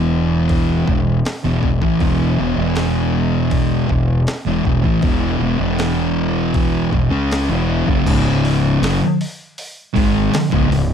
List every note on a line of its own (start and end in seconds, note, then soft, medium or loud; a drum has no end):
0.00 0.84 E1 loud
0.00 0.87 E2 medium
0.00 0.87 B2 medium
0.00 0.88 E3 loud
0.49 kick loud
0.49 open hi-hat medium
0.88 1.23 E1 medium
0.88 1.18 E2 medium
0.88 1.19 B2 medium
0.88 kick medium
1.25 snare loud
1.25 open hi-hat medium
1.45 1.62 E1 medium
1.45 1.62 E2 medium
1.45 1.63 B2 loud
1.63 1.81 E1 medium
1.63 1.81 E2 medium
1.63 1.82 B2 medium
1.63 kick medium
1.81 2.00 A1 medium
1.81 2.00 A2 medium
1.81 2.00 E3 loud
1.81 kick medium
2.00 2.36 E1 loud
2.00 2.37 E2 medium
2.00 2.38 B2 loud
2.00 2.38 E3 loud
2.00 kick loud
2.00 open hi-hat soft
2.38 2.57 E1 medium
2.38 2.56 E2 medium
2.38 2.56 B2 loud
2.57 3.87 E1 loud
2.57 3.88 E2 loud
2.57 3.88 B2 loud
2.57 3.89 E3 loud
2.75 snare loud
2.75 open hi-hat medium
3.51 kick loud
3.51 open hi-hat medium
3.89 4.25 E1 medium
3.89 4.20 E2 medium
3.89 4.20 B2 medium
3.89 kick medium
4.27 snare loud
4.27 open hi-hat medium
4.47 4.65 E1 medium
4.47 4.65 E2 medium
4.47 4.65 B2 loud
4.65 4.83 E1 medium
4.65 4.85 E2 medium
4.65 4.85 B2 medium
4.65 kick medium
4.84 5.02 A1 loud
4.84 5.03 A2 medium
4.84 5.03 E3 loud
4.84 kick medium
5.02 5.38 E1 loud
5.02 5.41 E2 medium
5.02 5.41 B2 medium
5.02 5.41 E3 loud
5.02 kick loud
5.02 open hi-hat soft
5.40 5.59 E1 medium
5.40 5.59 E2 medium
5.40 5.60 B2 loud
5.60 6.89 E1 loud
5.60 6.91 E2 medium
5.60 6.91 B2 medium
5.60 6.92 E3 loud
5.79 snare loud
5.79 open hi-hat medium
6.54 kick loud
6.54 open hi-hat medium
6.92 7.10 E1 medium
6.92 7.11 E2 medium
6.92 7.10 B2 medium
6.92 kick medium
7.11 7.47 C#2 medium
7.11 7.48 C#3 medium
7.11 7.48 G#3 medium
7.11 7.49 C#4 loud
7.31 snare loud
7.31 open hi-hat medium
7.49 7.85 E1 medium
7.49 7.86 E2 medium
7.49 7.86 B2 loud
7.49 7.87 E3 loud
7.87 8.05 F#1 loud
7.87 8.05 F#2 medium
7.87 8.06 C#3 loud
7.87 kick loud
8.06 8.78 C#1 loud
8.06 8.81 C#2 medium
8.06 8.81 G#2 medium
8.06 8.82 C#3 medium
8.06 kick loud
8.06 open hi-hat medium
8.06 crash loud
8.45 open hi-hat medium
8.81 8.99 F#1 loud
8.81 9.00 F#2 loud
8.81 9.00 C#3 loud
8.81 snare loud
8.81 open hi-hat medium
9.21 open hi-hat medium
9.58 open hi-hat medium
9.95 10.31 G#1 medium
9.95 10.32 G#2 loud
9.95 10.32 D#3 loud
9.95 10.32 G#3 medium
9.95 kick loud
9.95 open hi-hat medium
10.33 muted distorted electric guitar stroke medium
10.33 muted fingered electric bass stroke soft
10.33 snare loud
10.33 open hi-hat medium
10.52 10.70 C#1 medium
10.52 10.70 C#2 medium
10.52 10.70 G#2 loud
10.52 kick loud
10.71 10.94 C#1 medium
10.71 10.94 C#2 medium
10.71 10.94 G#2 medium
10.71 open hi-hat medium